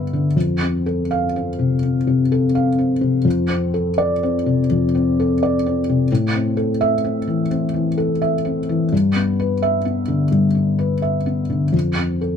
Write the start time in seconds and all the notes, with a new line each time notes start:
Already playing: G2 D3 B3 B4 E5
0.13 D3
0.36 F2
0.62 C4
0.86 A4
1.11 F5
1.36 C4
1.59 C3
1.83 C4
2.07 C3
2.32 A4
2.55 F5
2.78 C4
3.01 C3
3.25 F2
3.50 C4
3.74 A4
3.98 D5
4.23 C4
4.46 C3
4.71 F2
4.95 C4
5.20 A4
5.43 D5
5.66 C4
5.89 C3
6.12 A2
6.35 C4
6.57 A4
6.81 E5
7.04 C4
7.27 E3
7.51 C4
7.74 E3
7.98 A4
8.22 E5
8.45 C4
8.69 E3
8.92 G2
9.15 B3
9.39 B4
9.62 E5
9.85 B3
10.08 D3
10.31 G2
10.55 B3
10.79 B4
11.02 E5
11.26 B3
11.50 D3
11.72 F2
11.97 C4
12.21 A4